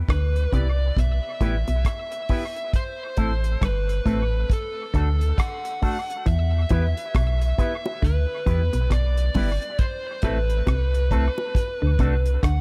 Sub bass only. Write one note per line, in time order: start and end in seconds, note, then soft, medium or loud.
0.09 0.47 D2 medium
0.53 0.91 C2 loud
0.97 1.20 B1 medium
1.41 1.64 A1 medium
1.68 1.83 B1 medium
3.18 3.56 A1 medium
3.62 4.00 G1 medium
4.06 4.44 A1 medium
4.94 5.33 D2 loud
6.27 6.65 E2 loud
6.71 6.94 E2 loud
7.15 7.53 B1 medium
8.03 8.26 D2 medium
8.47 8.70 E2 loud
8.74 8.89 B1 medium
8.91 9.29 B1 loud
9.36 9.59 G1 loud
10.23 10.62 A1 medium
10.67 11.29 C2 medium
11.82 11.97 D2 medium
11.99 12.38 C2 medium
12.43 12.61 D2 medium